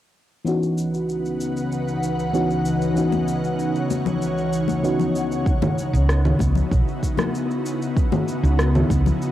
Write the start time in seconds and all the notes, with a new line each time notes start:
0.45 C#2 C#3 E3 B3 C#4 D#4 F#4 B4 F#5, cabasa
0.63 cabasa
0.78 cabasa
0.94 cabasa
1.09 cabasa
1.25 cabasa
1.41 cabasa
1.57 cabasa
1.72 cabasa
1.88 cabasa
2.03 cabasa
2.19 cabasa
2.33 E3 B3 C#4 D#4 F#4, cabasa
2.50 cabasa
2.65 cabasa
2.82 cabasa
2.94 E3 B3 C#4 D#4 F#4 C#5, cabasa
3.12 high conga, cabasa
3.28 cabasa
3.44 cabasa
3.59 cabasa
3.75 cabasa
3.90 high conga, cabasa
4.06 low conga, cabasa
4.22 cabasa
4.38 cabasa
4.53 cabasa
4.68 high conga, cabasa
4.83 E3 B3 C#4 D#4 F#4, cabasa
5.00 low conga, cabasa
5.16 cabasa
5.32 cabasa
5.46 C#3 B3 D#4 E4 F#4, kick, cabasa
5.62 high conga, low conga, cabasa
5.78 cabasa
5.93 C#2, cabasa
6.09 cross-stick, cabasa
6.25 low conga, cabasa
6.39 C#2, kick, high conga, cabasa
6.55 low conga, cabasa
6.71 B1, kick, cabasa
6.88 cabasa
7.03 kick, cabasa
7.17 cross-stick, high conga, low conga, cabasa
7.35 cabasa
7.51 cabasa
7.66 cabasa
7.82 cabasa
7.97 kick, cabasa
8.12 high conga, low conga, cabasa
8.28 cabasa
8.43 C#2, cabasa
8.59 cross-stick, cabasa
8.75 low conga, cabasa
8.90 C#2, kick, high conga, cabasa
9.06 low conga, cabasa
9.22 cabasa